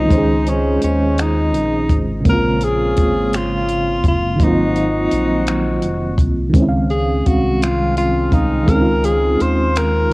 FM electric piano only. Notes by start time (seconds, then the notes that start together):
Already playing: C#4 F4
0.06 D#3 G#3
0.12 C#4 C5
0.18 G#4
2.21 C#3 G#3
2.26 A#3 C4
2.33 F4
4.36 D#3 F#3
4.42 A#3 C4
4.47 F4
6.49 D#3 G#3
6.56 C4 C#4
6.62 E4
6.68 F5
8.64 D#3 G#3
8.69 C4 C#4
8.75 D#4
8.82 F4